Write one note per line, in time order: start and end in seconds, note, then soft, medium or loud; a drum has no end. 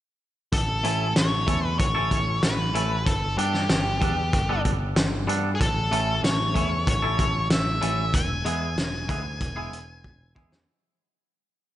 0.52 0.82 A1 medium
0.52 1.12 A4 medium
0.52 kick medium
0.52 closed hi-hat medium
0.84 1.14 A1 medium
0.84 1.05 A3 medium
0.84 1.05 C#4 medium
0.84 1.05 E4 medium
0.84 1.05 A4 medium
0.84 closed hi-hat medium
1.16 1.45 A1 medium
1.16 1.66 C#5 medium
1.16 snare medium
1.16 closed hi-hat medium
1.47 1.77 E2 medium
1.47 1.63 A3 medium
1.47 1.63 C#4 medium
1.47 1.62 E4 medium
1.47 1.62 A4 medium
1.47 kick medium
1.47 closed hi-hat medium
1.63 1.78 B4 medium
1.63 muted clean electric guitar stroke soft
1.79 2.09 A1 medium
1.79 2.43 C#5 medium
1.79 kick medium
1.79 closed hi-hat medium
1.95 2.16 A3 medium
1.95 2.16 C#4 medium
1.95 2.16 E4 medium
1.95 2.16 A4 medium
2.11 2.41 A1 medium
2.11 kick medium
2.11 closed hi-hat medium
2.42 2.72 A1 medium
2.42 3.03 B4 medium
2.42 snare loud
2.42 closed hi-hat medium
2.73 3.04 A1 medium
2.73 2.95 A3 medium
2.73 2.95 C#4 medium
2.73 2.96 E4 medium
2.73 2.96 A4 medium
2.73 closed hi-hat medium
3.06 3.36 G1 medium
3.06 3.38 A4 medium
3.06 kick medium
3.06 closed hi-hat medium
3.37 3.67 G2 medium
3.37 3.58 G3 medium
3.37 3.59 B3 medium
3.37 3.59 D4 medium
3.37 4.61 G4 medium
3.37 3.59 A4 medium
3.37 closed hi-hat soft
3.54 snare soft
3.69 3.99 G1 medium
3.69 snare medium
3.69 closed hi-hat medium
4.01 4.31 E2 medium
4.01 4.17 G3 medium
4.01 4.17 B3 medium
4.01 4.17 D4 medium
4.01 4.16 A4 medium
4.01 kick medium
4.01 closed hi-hat medium
4.17 muted clean electric guitar stroke soft
4.33 4.63 G1 medium
4.33 kick medium
4.33 closed hi-hat medium
4.49 4.70 G3 medium
4.49 4.70 B3 medium
4.49 4.70 D4 medium
4.49 4.70 A4 medium
4.65 4.95 G1 medium
4.65 kick medium
4.65 closed hi-hat medium
4.96 5.26 G1 medium
4.96 snare loud
4.96 closed hi-hat medium
5.27 5.57 G2 medium
5.27 5.49 G3 medium
5.27 5.49 B3 medium
5.27 5.49 D4 medium
5.27 5.49 A4 medium
5.27 closed hi-hat soft
5.55 5.61 G#4 medium
5.60 5.90 A1 medium
5.60 6.20 A4 medium
5.60 kick medium
5.60 closed hi-hat medium
5.91 6.21 A1 medium
5.91 6.12 A3 medium
5.91 6.13 C#4 medium
5.91 6.13 E4 medium
5.91 6.13 A4 medium
5.91 closed hi-hat medium
6.23 6.53 A1 medium
6.23 6.88 C#5 medium
6.23 snare medium
6.23 closed hi-hat medium
6.54 6.85 E2 medium
6.54 6.71 A3 medium
6.54 6.70 C#4 medium
6.54 6.70 E4 medium
6.54 6.69 A4 medium
6.54 kick medium
6.54 closed hi-hat medium
6.71 muted clean electric guitar stroke soft
6.87 7.16 A1 medium
6.87 7.47 C#5 medium
6.87 kick medium
6.87 closed hi-hat medium
7.02 7.24 A3 medium
7.02 7.24 C#4 medium
7.02 7.24 E4 medium
7.02 7.23 A4 medium
7.19 7.48 A1 medium
7.19 kick medium
7.19 closed hi-hat medium
7.50 7.79 A1 medium
7.50 8.15 E5 medium
7.50 snare loud
7.50 closed hi-hat medium
7.81 8.11 A1 medium
7.81 8.02 A3 medium
7.81 8.03 C#4 medium
7.81 8.03 E4 medium
7.81 8.03 A4 medium
7.81 closed hi-hat medium
8.14 8.43 E1 medium
8.14 10.33 G#5 medium
8.14 kick medium
8.14 closed hi-hat medium
8.45 8.75 E2 medium
8.45 8.66 G#3 medium
8.45 8.66 B3 medium
8.45 8.66 E4 medium
8.45 8.67 G#4 medium
8.45 closed hi-hat medium
8.76 9.06 E1 medium
8.76 snare medium
8.76 closed hi-hat medium
9.09 9.38 D2 medium
9.09 9.24 G#3 medium
9.09 9.24 B3 medium
9.09 9.23 E4 medium
9.09 9.23 G#4 medium
9.09 kick medium
9.09 closed hi-hat medium
9.24 muted clean electric guitar stroke soft
9.41 9.70 E1 medium
9.41 kick medium
9.41 closed hi-hat medium
9.56 9.78 G#3 medium
9.56 9.78 B3 medium
9.56 9.77 E4 medium
9.56 9.77 G#4 medium
9.71 10.01 E1 medium
9.71 closed hi-hat medium
10.04 10.34 E1 medium
10.04 kick soft
10.35 10.65 E2 medium
10.35 10.56 G#3 medium
10.35 10.57 B3 medium
10.35 10.57 E4 medium
10.35 10.57 G#4 medium
10.35 kick medium
10.52 snare medium